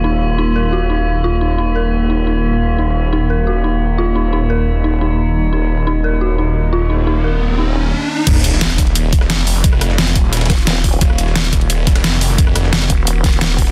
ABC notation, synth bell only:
X:1
M:4/4
L:1/8
Q:1/4=175
K:Ebm
V:1 name="Synth bell"
E z E B G E z F | E E B z E E z2 | E z E B G E z F | E E B z E E z2 |
E z E B G E z F | E E B z E E z2 | z8 | z8 |
z8 | z8 |]